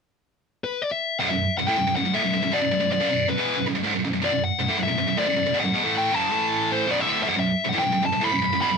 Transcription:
0.64 0.82 B4 medium
0.82 0.91 D5 medium
0.91 1.18 E5 medium
1.19 1.28 B1 medium
1.19 1.28 F#2 medium
1.19 1.28 F#5 loud
1.29 1.44 B1 medium
1.29 1.44 F#2 medium
1.29 1.57 E5 medium
1.58 1.67 B1 medium
1.58 1.68 F#2 medium
1.58 1.66 F#5 loud
1.67 1.76 A2 medium
1.67 1.76 E3 loud
1.67 1.95 G5 loud
1.78 1.86 B1 medium
1.78 1.86 F#2 medium
1.87 1.95 B1 medium
1.87 1.96 F#2 medium
1.96 2.04 B1 medium
1.96 2.04 F#2 medium
1.96 2.15 F#5 loud
2.05 2.14 B1 medium
2.05 2.15 F#2 medium
2.14 2.23 D2 loud
2.14 2.23 A2 loud
2.14 2.52 E5 medium
2.24 2.32 B1 medium
2.24 2.33 F#2 medium
2.33 2.41 B1 medium
2.33 2.42 F#2 medium
2.43 2.52 B1 medium
2.43 2.52 F#2 medium
2.52 2.61 E2 medium
2.52 2.61 B2 loud
2.52 2.88 D5 medium
2.61 2.70 B1 medium
2.61 2.70 F#2 medium
2.72 2.79 B1 medium
2.72 2.80 F#2 medium
2.80 2.90 B1 medium
2.80 2.90 F#2 medium
2.91 3.00 B1 medium
2.91 2.99 F#2 medium
2.91 3.29 D5 medium
3.01 3.09 F#2 medium
3.01 3.09 C#3 loud
3.10 3.25 B1 medium
3.10 3.25 F#2 medium
3.29 3.38 B1 medium
3.29 3.38 F#2 medium
3.29 3.64 B4 medium
3.38 3.56 E2 loud
3.38 3.56 B2 loud
3.38 3.57 E3 loud
3.57 3.66 B1 medium
3.57 3.66 F#2 medium
3.67 3.74 B1 medium
3.67 3.75 F#2 medium
3.75 3.83 B1 medium
3.75 3.84 F#2 medium
3.84 3.93 C#2 medium
3.84 3.94 G#2 loud
3.94 4.03 B1 medium
3.94 4.03 F#2 medium
4.04 4.12 B1 medium
4.04 4.12 F#2 medium
4.13 4.21 B1 medium
4.13 4.21 F#2 medium
4.22 4.31 B1 medium
4.22 4.31 F#2 loud
4.22 4.43 D5 medium
4.32 4.47 B1 medium
4.32 4.47 F#2 medium
4.44 4.78 F#5 medium
4.60 4.69 B1 medium
4.60 4.69 F#2 medium
4.69 4.78 A2 medium
4.69 4.79 E3 loud
4.78 4.87 B1 medium
4.78 4.87 F#2 medium
4.83 5.18 E5 medium
4.88 4.97 B1 medium
4.88 4.98 F#2 medium
4.98 5.07 B1 medium
4.98 5.07 F#2 medium
5.08 5.17 B1 medium
5.08 5.18 F#2 medium
5.18 5.27 D2 loud
5.18 5.27 A2 loud
5.18 5.57 D5 medium
5.27 5.35 B1 medium
5.27 5.35 F#2 medium
5.36 5.45 B1 medium
5.36 5.45 F#2 medium
5.46 5.54 B1 medium
5.46 5.54 F#2 medium
5.54 5.63 E2 loud
5.54 5.64 B2 loud
5.60 5.93 F#5 medium
5.64 5.73 B1 medium
5.64 5.74 F#2 medium
5.74 5.83 E2 loud
5.74 5.83 B2 loud
5.83 6.12 A2 medium
5.83 6.12 E3 loud
5.83 6.12 A3 loud
5.98 6.14 G5 medium
6.12 6.31 F#2 medium
6.12 6.32 C#3 medium
6.12 6.32 F#3 medium
6.12 6.72 A5 loud
6.31 6.86 A2 medium
6.31 6.87 E3 medium
6.31 6.87 A3 medium
6.72 6.89 C5 medium
6.86 7.05 B1 medium
6.86 7.06 F#2 loud
6.86 7.06 B2 loud
6.91 7.00 D5 medium
7.00 7.22 E5 medium
7.06 7.25 D2 medium
7.06 7.25 A2 medium
7.06 7.25 D3 medium
7.23 7.34 B1 medium
7.23 7.35 F#2 loud
7.23 7.26 E5 medium
7.29 7.37 F#5 loud
7.35 7.51 B1 medium
7.35 7.51 F#2 medium
7.35 7.67 E5 medium
7.65 7.72 B1 medium
7.65 7.73 F#2 medium
7.69 7.82 A2 medium
7.69 7.76 F#5 loud
7.73 7.82 E3 loud
7.78 8.05 G5 medium
7.83 7.91 B1 medium
7.83 7.92 F#2 medium
7.92 8.01 B1 medium
7.92 8.01 F#2 medium
8.02 8.11 B1 medium
8.02 8.12 F#2 medium
8.02 8.24 A5 loud
8.12 8.20 B1 medium
8.12 8.21 F#2 medium
8.21 8.30 D2 medium
8.21 8.30 A2 loud
8.21 8.60 B5 loud
8.32 8.40 B1 medium
8.32 8.40 F#2 medium
8.42 8.50 B1 medium
8.42 8.50 F#2 medium
8.52 8.61 B1 medium
8.52 8.61 F#2 medium
8.61 8.69 E2 loud
8.61 8.70 B2 loud
8.61 8.78 B5 loud
8.70 8.78 B1 medium
8.70 8.78 F#2 medium

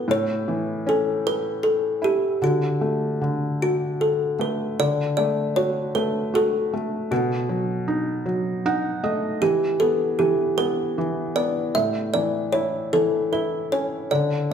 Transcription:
0.00 0.11 B4 medium
0.08 2.38 A2 medium
0.08 0.90 C#5 medium
0.48 1.99 E3 soft
0.87 2.38 C#4 medium
0.87 1.27 A4 medium
1.27 1.66 B4 medium
1.63 2.00 A4 medium
2.02 2.40 E4 soft
2.02 2.40 G4 medium
2.42 3.20 D3 soft
2.42 3.61 F#4 medium
2.81 4.35 A3 soft
3.21 4.74 D3 soft
3.62 4.02 F#4 medium
4.01 4.41 A4 medium
4.39 4.77 A3 soft
4.39 4.80 B4 medium
4.79 7.08 D3 soft
4.79 5.16 D5 medium
5.17 5.94 A3 soft
5.17 5.57 D5 medium
5.56 6.32 F#4 soft
5.56 5.96 C#5 medium
5.95 6.72 A3 medium
5.95 6.35 B4 medium
6.34 7.09 F#4 medium
6.34 7.14 A4 medium
6.73 7.10 A3 soft
7.11 9.37 B2 medium
7.11 8.22 F#4 medium
7.49 8.24 F#3 soft
7.88 8.64 D#4 soft
8.26 9.37 F#3 medium
8.66 9.39 D#4 medium
8.66 9.01 F#5 medium
9.03 9.40 A3 soft
9.03 9.39 D#5 medium
9.42 10.18 E3 medium
9.42 9.81 G4 medium
9.80 10.57 B3 soft
9.80 10.19 A4 medium
10.19 10.96 E3 medium
10.19 10.55 G4 medium
10.58 11.34 B3 soft
10.58 11.38 B4 medium
10.98 11.73 E3 medium
11.36 11.74 B3 soft
11.36 11.76 D5 medium
11.75 14.06 A2 soft
11.75 12.11 E5 medium
12.14 12.92 E3 soft
12.14 12.54 D5 medium
12.53 13.31 E4 medium
12.53 12.93 C#5 medium
12.93 14.07 E3 soft
12.93 13.29 A4 medium
13.32 14.08 E4 medium
13.32 13.69 B4 medium
13.72 14.10 C#4 soft
13.72 14.12 C#5 medium
14.11 14.53 D3 soft
14.11 14.47 D5 medium

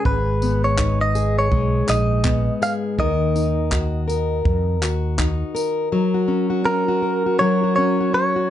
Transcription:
0.00 1.51 G#3 medium
0.00 0.14 C#4 medium
0.00 0.14 F4 medium
0.05 1.48 G#1 loud
0.05 2.98 G#2 medium
0.05 1.14 G#4 medium
0.05 0.64 B4 medium
0.05 kick loud
0.42 2.23 B3 medium
0.42 tambourine medium
0.64 1.01 C#5 medium
0.78 1.87 D#4 medium
0.78 kick loud
0.78 clap loud
1.01 1.38 D#5 medium
1.15 2.61 G#4 medium
1.15 tambourine medium
1.39 1.89 C#5 medium
1.52 1.82 B1 medium
1.52 3.07 G#3 medium
1.52 kick loud
1.87 2.49 A#1 medium
1.87 3.36 D#4 medium
1.87 2.62 D#5 medium
1.87 clap loud
1.87 tambourine medium
2.24 3.07 B3 medium
2.24 kick loud
2.24 clap medium
2.62 2.99 G#4 medium
2.62 2.73 F5 loud
2.62 tambourine medium
2.98 4.41 D#2 loud
2.98 5.92 D#3 medium
2.98 4.07 A#4 medium
2.98 4.42 D#5 medium
2.98 kick loud
3.36 5.17 D#4 medium
3.36 tambourine medium
3.72 4.81 F#4 medium
3.72 kick loud
3.72 clap loud
4.08 5.54 A#4 medium
4.08 tambourine medium
4.45 4.81 F2 medium
4.45 kick loud
4.81 5.42 D#2 medium
4.81 6.14 F#4 medium
4.81 clap loud
4.81 tambourine medium
5.18 6.01 D#4 medium
5.18 kick loud
5.18 clap loud
5.55 5.92 A#4 medium
5.55 tambourine medium
5.92 7.39 F#3 medium
5.92 7.02 A#4 medium
6.14 6.49 F#4 medium
6.28 6.65 C#4 medium
6.50 6.87 F#4 medium
6.65 7.78 C#4 medium
6.65 7.39 A#4 loud
6.88 7.25 F#4 medium
7.02 7.41 A#4 medium
7.26 7.62 F#4 medium
7.39 8.50 F#3 medium
7.39 8.50 A#4 medium
7.39 7.75 C#5 loud
7.64 7.99 F#4 medium
7.76 8.13 C#4 medium
7.76 8.13 C#5 loud
8.00 8.35 F#4 medium
8.13 8.50 C#4 medium
8.13 8.50 C#5 loud
8.36 8.50 F#4 medium

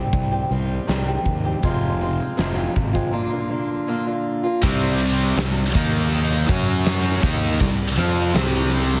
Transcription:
0.00 0.33 G3 soft
0.00 0.31 C4 medium
0.00 0.30 G4 medium
0.13 0.41 C2 medium
0.13 kick loud
0.13 open hi-hat medium
0.32 0.49 G3 medium
0.32 0.50 C4 medium
0.32 0.51 G4 medium
0.49 0.78 C2 medium
0.49 0.86 D#3 medium
0.49 0.87 G3 medium
0.49 0.88 C4 medium
0.49 0.89 G4 medium
0.49 open hi-hat soft
0.87 1.16 C2 medium
0.87 1.44 C3 medium
0.87 1.44 D#3 medium
0.87 1.08 G3 medium
0.87 1.07 C4 medium
0.87 1.05 G4 medium
0.87 snare medium
0.87 open hi-hat medium
1.07 1.46 G3 soft
1.07 1.45 C4 medium
1.07 1.44 G4 medium
1.25 1.54 D#2 medium
1.25 kick medium
1.25 open hi-hat soft
1.45 1.62 G3 soft
1.45 1.62 C4 medium
1.45 1.61 G4 medium
1.63 2.19 F1 medium
1.63 2.36 F2 medium
1.63 2.36 C3 medium
1.63 1.98 F3 medium
1.63 2.00 G#3 medium
1.63 2.00 C4 medium
1.63 2.01 F4 medium
1.63 kick loud
1.63 open hi-hat medium
1.99 2.37 F3 medium
1.99 2.37 G#3 medium
1.99 2.37 C4 medium
1.99 2.38 F4 medium
1.99 open hi-hat soft
2.37 2.66 F1 medium
2.37 2.94 F2 medium
2.37 2.94 C3 medium
2.37 2.57 F3 medium
2.37 2.56 G#3 medium
2.37 2.56 C4 medium
2.37 2.54 F4 medium
2.37 snare loud
2.37 open hi-hat medium
2.56 2.73 F3 soft
2.56 2.74 G#3 medium
2.56 2.74 C4 medium
2.56 2.74 F4 medium
2.75 3.04 G#1 medium
2.75 muted steel-string acoustic guitar stroke soft
2.75 kick medium
2.75 open hi-hat soft
2.93 3.11 F3 medium
2.93 3.11 G#3 medium
2.93 3.11 C4 medium
2.93 3.10 F4 medium
2.93 kick medium
3.11 3.68 A#2 medium
3.11 3.48 D3 medium
3.11 3.32 A#3 medium
3.11 3.31 D4 medium
3.11 3.29 F4 medium
3.30 3.49 A#3 soft
3.30 3.49 D4 medium
3.30 3.50 F4 medium
3.49 3.86 D3 medium
3.49 3.87 A#3 medium
3.49 3.88 D4 medium
3.49 3.88 F4 medium
3.87 4.43 A#2 medium
3.87 4.44 D3 medium
3.87 4.07 A#3 medium
3.87 4.06 D4 medium
3.87 4.05 F4 medium
4.06 4.44 A#3 soft
4.06 4.44 D4 medium
4.06 4.42 F4 medium
4.43 4.61 A#3 medium
4.43 4.61 D4 medium
4.43 4.60 F4 medium
4.63 5.34 C2 medium
4.63 5.36 C3 loud
4.63 5.37 G3 loud
4.63 5.37 C4 loud
4.63 kick loud
4.63 crash loud
5.00 ride medium
5.37 5.72 C2 medium
5.37 5.67 C3 medium
5.37 5.68 G3 medium
5.37 snare loud
5.37 ride medium
5.75 6.45 D#2 medium
5.75 6.48 D#3 medium
5.75 6.48 A#3 medium
5.75 6.49 D#4 loud
5.75 kick loud
5.75 crash medium
6.49 7.19 F#2 medium
6.49 7.22 F#3 loud
6.49 7.23 C#4 loud
6.49 7.23 F#4 loud
6.49 kick loud
6.49 ride medium
6.85 snare loud
6.85 ride loud
7.23 7.58 D#2 loud
7.23 7.59 D#3 medium
7.23 7.60 A#3 medium
7.23 7.60 D#4 loud
7.23 kick loud
7.23 snare soft
7.23 ride medium
7.60 7.95 C2 medium
7.60 7.90 C3 medium
7.60 7.91 G3 medium
7.60 kick medium
7.60 ride loud
7.97 8.32 F2 loud
7.97 8.34 F3 medium
7.97 8.34 C4 medium
7.97 8.34 F4 medium
7.97 ride medium
8.34 9.00 C2 loud
8.34 9.00 C3 medium
8.34 9.00 G3 loud
8.34 9.00 C4 loud
8.34 snare loud
8.34 ride loud
8.72 ride medium

